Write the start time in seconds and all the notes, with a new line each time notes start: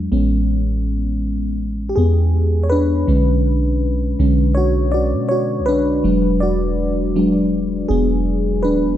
Already playing: F#3 G#3 D4
0.12 A1 G#3 B3 C#4
1.89 G4
1.96 E2 B3 G#4
2.63 C#5
2.70 D4 B4
3.07 B1 D3 G#3 C#4
4.19 B1 D3 G#3 C#4
4.55 F#4 C#5
4.92 F#4 D5
5.13 B2
5.29 F#4 C#5
5.59 B1
5.66 D4 B4
6.04 E1 F#3 G#3 D4
6.40 F#4 D5
7.16 F#3 G#3 D4
7.89 E1 B3 G#4
8.63 D1 D4 B4
8.84 E1